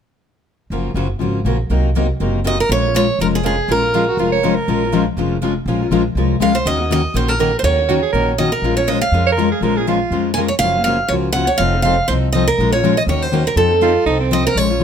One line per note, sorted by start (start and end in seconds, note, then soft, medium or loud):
0.70 0.91 F#1 medium
0.70 0.90 C#3 medium
0.70 0.90 F3 medium
0.70 0.90 F#3 medium
0.70 0.90 A#3 medium
0.70 0.90 C#4 medium
0.70 0.90 F4 medium
0.70 0.91 F#4 medium
0.70 0.90 A#4 medium
0.94 1.16 F#1 medium
0.94 1.06 C#3 medium
0.94 1.06 F3 medium
0.94 1.06 F#3 medium
0.94 1.06 A#3 medium
0.94 1.07 C#4 medium
0.94 1.07 F4 medium
0.94 1.07 F#4 medium
0.94 1.07 A#4 medium
1.19 1.42 G#1 medium
1.19 1.38 C#3 medium
1.19 1.38 F3 medium
1.19 1.39 F#3 medium
1.19 1.39 A#3 medium
1.19 1.39 C#4 medium
1.19 1.39 F4 medium
1.19 1.39 F#4 medium
1.19 1.40 A#4 medium
1.45 1.66 A#1 medium
1.45 1.56 C#3 medium
1.45 1.56 F3 medium
1.45 1.56 F#3 medium
1.45 1.56 A#3 medium
1.45 1.56 C#4 medium
1.45 1.56 F4 medium
1.45 1.56 F#4 medium
1.45 1.57 A#4 medium
1.70 2.10 C2 medium
1.70 1.89 C3 medium
1.70 1.89 F#3 medium
1.70 1.89 A#3 medium
1.70 1.89 D#4 medium
1.70 1.89 A#4 medium
1.96 2.06 C3 medium
1.96 2.06 F#3 medium
1.96 2.06 A#3 medium
1.96 2.06 D#4 medium
1.96 2.06 A#4 medium
2.20 2.60 F#1 medium
2.20 2.39 C3 medium
2.20 2.39 F#3 medium
2.20 2.39 A#3 medium
2.20 2.39 D#4 medium
2.20 2.39 A#4 medium
2.45 2.55 C3 medium
2.45 2.55 F#3 medium
2.45 2.55 A#3 medium
2.45 2.56 D#4 medium
2.45 2.56 A#4 medium
2.45 2.60 D#5 medium
2.60 2.71 A#4 medium
2.69 3.09 A#1 medium
2.69 2.84 F3 medium
2.69 2.84 G#3 medium
2.69 2.84 C#4 medium
2.69 2.85 F4 medium
2.69 2.84 A#4 medium
2.69 2.95 C#5 loud
2.85 2.94 C#4 soft
2.85 2.95 F4 soft
2.85 2.95 A#4 soft
2.94 3.05 F3 medium
2.94 3.05 G#3 medium
2.94 3.05 C#4 medium
2.94 3.06 F4 medium
2.94 3.06 A#4 medium
2.94 3.21 C#5 medium
3.19 3.59 F1 medium
3.19 3.38 F3 medium
3.19 3.38 G#3 medium
3.19 3.38 C#4 medium
3.19 3.38 F4 medium
3.19 3.26 A#4 medium
3.19 3.39 A#4 medium
3.35 3.45 G#4 medium
3.44 3.55 F3 medium
3.44 3.55 G#3 medium
3.44 3.55 C#4 medium
3.44 3.55 F4 medium
3.44 3.71 G#4 medium
3.44 3.55 A#4 medium
3.68 4.08 A#1 medium
3.68 3.83 F3 medium
3.68 3.83 G#3 medium
3.68 3.83 C#4 medium
3.68 3.82 F4 medium
3.68 3.81 A#4 medium
3.68 4.54 A#4 medium
3.82 3.94 F4 soft
3.82 3.93 A#4 soft
3.94 4.04 F3 medium
3.94 4.04 G#3 medium
3.94 4.04 C#4 medium
3.94 4.09 F4 medium
3.94 4.05 F4 medium
3.94 4.05 A#4 medium
4.08 4.19 F#4 medium
4.17 4.57 F1 medium
4.17 4.37 F3 medium
4.17 4.37 G#3 medium
4.17 4.37 C#4 medium
4.17 4.32 F4 medium
4.17 4.37 F4 medium
4.17 4.37 A#4 medium
4.32 4.56 C#5 medium
4.43 4.54 F3 medium
4.43 4.53 G#3 medium
4.43 4.54 C#4 medium
4.43 4.54 F4 medium
4.43 4.54 A#4 medium
4.55 5.06 A#4 medium
4.68 5.08 A#1 medium
4.68 4.82 F3 medium
4.68 4.82 G#3 medium
4.68 4.82 C#4 medium
4.68 4.82 F4 medium
4.68 4.82 A#4 medium
4.83 4.93 C#4 soft
4.83 4.93 F4 medium
4.83 4.93 A#4 medium
4.93 5.03 F3 medium
4.93 5.03 G#3 medium
4.93 5.03 C#4 medium
4.93 5.03 F4 loud
4.93 5.04 A#4 loud
5.17 5.57 F1 medium
5.17 5.36 F3 medium
5.17 5.36 G#3 medium
5.17 5.36 C#4 medium
5.17 5.36 F4 medium
5.17 5.36 A#4 medium
5.42 5.52 F3 medium
5.42 5.53 G#3 medium
5.42 5.53 C#4 medium
5.42 5.53 F4 medium
5.42 5.53 A#4 medium
5.66 5.86 A#1 medium
5.66 5.81 F3 medium
5.66 5.81 G#3 medium
5.66 5.81 C#4 medium
5.66 5.81 F4 medium
5.66 5.80 A#4 medium
5.81 5.90 C#4 soft
5.81 5.91 F4 soft
5.81 5.91 A#4 soft
5.91 6.12 A#1 medium
5.91 6.01 F3 medium
5.91 6.02 G#3 medium
5.91 6.02 C#4 medium
5.91 6.02 F4 medium
5.91 6.02 A#4 loud
6.15 6.37 C2 medium
6.15 6.35 F3 medium
6.15 6.35 G#3 medium
6.15 6.35 C#4 medium
6.15 6.35 F4 medium
6.15 6.35 A#4 medium
6.40 6.62 C#2 medium
6.40 6.51 F3 medium
6.40 6.51 G#3 medium
6.40 6.51 C#4 medium
6.40 6.51 F4 medium
6.40 6.51 A#4 medium
6.40 6.56 F5 medium
6.55 6.66 C5 medium
6.66 7.05 D#2 medium
6.66 6.79 D#3 medium
6.66 6.84 F#3 medium
6.66 6.79 A#3 medium
6.66 6.79 C#4 medium
6.66 6.84 D#4 medium
6.66 6.79 F#4 medium
6.66 6.77 A#4 medium
6.66 6.89 D#5 medium
6.78 6.90 C#4 soft
6.78 6.90 F#4 soft
6.78 6.89 A#4 medium
6.90 7.01 D#3 medium
6.90 7.01 F#3 medium
6.90 7.01 A#3 medium
6.90 7.01 C#4 medium
6.90 7.01 D#4 medium
6.90 7.01 F#4 loud
6.90 7.01 A#4 medium
6.90 7.14 D#5 medium
7.14 7.54 A#1 medium
7.14 7.33 D#3 medium
7.14 7.33 F#3 medium
7.14 7.33 A#3 medium
7.14 7.33 C#4 medium
7.14 7.33 D#4 medium
7.14 7.34 F#4 medium
7.14 7.34 A#4 medium
7.14 7.29 C5 medium
7.28 7.30 A4 medium
7.28 7.39 A#4 medium
7.39 7.50 D#3 medium
7.39 7.50 F#3 medium
7.39 7.50 A#3 medium
7.39 7.50 C#4 medium
7.39 7.50 D#4 medium
7.39 7.51 F#4 medium
7.39 7.59 A#4 medium
7.39 7.51 A#4 medium
7.59 7.64 C5 medium
7.63 8.03 D#2 medium
7.63 7.78 D#3 medium
7.63 7.83 F#3 medium
7.63 7.78 A#3 medium
7.63 7.79 C#4 medium
7.63 7.83 D#4 medium
7.63 7.78 F#4 medium
7.63 7.77 A#4 medium
7.63 8.41 C#5 medium
7.78 7.89 C#4 soft
7.78 7.89 F#4 soft
7.78 7.89 A#4 medium
7.88 7.99 D#3 medium
7.88 7.99 F#3 medium
7.88 7.99 A#3 medium
7.88 8.00 C#4 medium
7.88 7.99 D#4 medium
7.88 7.95 F#4 medium
7.88 8.00 F#4 medium
7.88 8.00 A#4 medium
8.02 8.12 G#4 medium
8.12 8.53 A#1 medium
8.12 8.32 D#3 medium
8.12 8.32 F#3 medium
8.12 8.33 A#3 medium
8.12 8.33 C#4 medium
8.12 8.32 D#4 medium
8.12 8.33 F#4 medium
8.12 8.31 A#4 medium
8.12 8.33 A#4 medium
8.38 8.49 D#3 medium
8.38 8.49 F#3 medium
8.38 8.49 A#3 medium
8.38 8.50 C#4 medium
8.38 8.49 D#4 medium
8.38 8.49 F#4 medium
8.38 8.50 A#4 medium
8.38 8.51 D#5 medium
8.52 8.76 A#4 medium
8.62 9.02 A#1 medium
8.62 8.77 F3 medium
8.62 8.77 G#3 medium
8.62 8.77 C#4 medium
8.62 8.77 F4 medium
8.62 8.76 A#4 medium
8.77 8.87 C#4 soft
8.77 8.88 F4 soft
8.77 8.88 A#4 medium
8.77 8.87 C#5 medium
8.88 8.98 F3 medium
8.88 8.99 G#3 medium
8.88 8.98 C#4 medium
8.88 8.99 F4 medium
8.88 8.99 A#4 medium
8.88 9.01 D#5 medium
9.01 10.33 F5 medium
9.12 9.52 F2 medium
9.12 9.31 F3 medium
9.12 9.31 G#3 medium
9.12 9.31 C#4 medium
9.12 9.31 F4 medium
9.12 9.32 A#4 medium
9.27 9.29 C#5 medium
9.32 9.50 A#4 medium
9.37 9.47 F3 medium
9.37 9.47 G#3 medium
9.37 9.47 C#4 medium
9.37 9.48 F4 medium
9.37 9.48 A#4 medium
9.52 9.64 G#4 medium
9.61 10.01 A#1 medium
9.61 9.75 F3 medium
9.61 9.76 G#3 medium
9.61 9.76 C#4 medium
9.61 9.76 F4 medium
9.61 9.78 A#4 medium
9.61 9.75 A#4 medium
9.77 9.86 C#4 soft
9.77 9.87 F4 soft
9.77 9.87 G#4 medium
9.77 9.87 A#4 soft
9.87 9.97 F3 medium
9.87 9.97 G#3 medium
9.87 9.97 C#4 medium
9.87 10.28 F4 medium
9.87 9.98 F4 medium
9.87 9.98 A#4 medium
10.11 10.51 F2 medium
10.11 10.30 F3 medium
10.11 10.30 G#3 medium
10.11 10.30 C#4 medium
10.11 10.30 F4 medium
10.11 10.30 A#4 medium
10.34 10.47 F3 medium
10.34 10.47 G#3 medium
10.34 10.47 C#4 medium
10.34 10.39 G#5 medium
10.38 10.47 F4 medium
10.38 10.48 A#4 medium
10.48 10.53 C#5 medium
10.59 11.00 F#1 medium
10.59 10.75 F3 medium
10.59 10.79 F#3 medium
10.59 10.80 F4 medium
10.59 10.80 A#4 medium
10.59 10.83 F5 loud
10.63 10.75 C#3 medium
10.63 10.76 A#3 medium
10.63 10.76 C#4 medium
10.63 10.75 F#4 medium
10.76 10.86 A#3 soft
10.76 10.86 C#4 soft
10.76 10.86 F#4 medium
10.84 10.96 C#3 medium
10.84 10.96 F3 medium
10.84 10.96 F#3 medium
10.84 10.96 A#3 medium
10.84 10.97 C#4 medium
10.84 10.96 F4 medium
10.84 10.96 A#4 loud
10.84 11.10 F5 medium
10.88 10.97 F#4 medium
11.08 11.49 C#2 medium
11.08 11.29 C#3 medium
11.08 11.29 F3 medium
11.08 11.28 F#3 medium
11.08 11.29 A#3 medium
11.08 11.29 C#4 medium
11.08 11.28 F4 medium
11.08 11.29 A#4 medium
11.08 11.13 C#5 medium
11.13 11.30 F#4 medium
11.32 11.45 C#3 medium
11.32 11.45 F3 medium
11.32 11.45 F#3 medium
11.32 11.45 A#3 medium
11.32 11.46 C#4 medium
11.32 11.45 F4 medium
11.32 11.46 F#4 medium
11.32 11.45 A#4 medium
11.32 11.48 F#5 medium
11.47 11.59 C#5 medium
11.58 11.99 F1 medium
11.58 11.73 F3 medium
11.58 11.73 C4 medium
11.58 11.73 D#4 medium
11.58 11.72 A4 medium
11.58 11.81 F5 loud
11.73 11.83 C4 soft
11.73 11.84 D#4 soft
11.73 11.84 A4 medium
11.82 11.95 F3 medium
11.82 11.95 C4 medium
11.82 11.95 D#4 medium
11.82 11.95 A4 medium
11.82 12.06 F5 medium
12.08 12.48 C2 medium
12.08 12.28 F3 medium
12.08 12.28 C4 medium
12.08 12.28 D#4 medium
12.08 12.28 A4 medium
12.08 12.13 C5 medium
12.32 12.44 F3 medium
12.32 12.45 C4 medium
12.32 12.45 D#4 medium
12.32 12.45 A4 medium
12.32 12.46 D#5 medium
12.47 12.72 A#4 medium
12.58 12.98 A#1 medium
12.58 12.72 F3 medium
12.58 12.72 G#3 medium
12.58 12.73 C#4 medium
12.58 12.73 F4 medium
12.58 12.72 A#4 medium
12.72 12.83 C#4 soft
12.72 12.83 F4 soft
12.72 12.83 A#4 medium
12.72 12.98 C#5 medium
12.83 12.93 F3 medium
12.83 12.93 G#3 medium
12.83 12.94 C#4 medium
12.83 12.94 F4 loud
12.83 12.94 A#4 medium
12.97 13.02 D#5 medium
13.07 13.47 D#2 medium
13.07 13.26 D#3 medium
13.07 13.26 F#3 medium
13.07 13.26 A#3 medium
13.07 13.26 C#4 medium
13.07 13.26 D#4 medium
13.07 13.26 F#4 medium
13.07 13.27 A#4 medium
13.07 13.22 C#5 medium
13.22 13.48 C5 medium
13.32 13.42 D#3 medium
13.32 13.43 F#3 medium
13.32 13.43 A#3 medium
13.32 13.43 C#4 medium
13.32 13.43 D#4 medium
13.32 13.43 F#4 medium
13.32 13.43 A#4 medium
13.47 13.57 A#4 medium
13.56 13.96 F2 medium
13.56 13.70 F3 medium
13.56 13.71 C4 medium
13.56 13.71 D#4 medium
13.56 14.27 A4 medium
13.56 13.70 A4 medium
13.71 13.80 C4 soft
13.71 13.82 D#4 soft
13.71 13.82 A4 medium
13.81 13.92 F3 medium
13.81 13.92 C4 medium
13.81 13.93 D#4 medium
13.81 14.05 F4 medium
13.81 13.93 A4 medium
14.06 14.46 C2 medium
14.06 14.25 F3 medium
14.06 14.25 C4 medium
14.06 14.19 D#4 medium
14.06 14.26 D#4 medium
14.06 14.26 A4 medium
14.20 14.53 C4 medium
14.31 14.41 F3 medium
14.31 14.42 C4 medium
14.31 14.42 D#4 medium
14.31 14.42 A4 medium
14.31 14.46 D#5 loud
14.47 14.57 A#4 medium
14.55 14.84 A#1 medium
14.55 14.70 F3 medium
14.55 14.70 G#3 medium
14.55 14.70 C#4 medium
14.55 14.69 F4 medium
14.55 14.68 A#4 medium
14.55 14.82 C#5 loud
14.69 14.79 C#4 soft
14.69 14.79 F4 soft
14.69 14.80 A#4 medium
14.80 14.84 F3 medium
14.80 14.84 G#3 medium
14.80 14.84 C#4 medium
14.80 14.84 F4 medium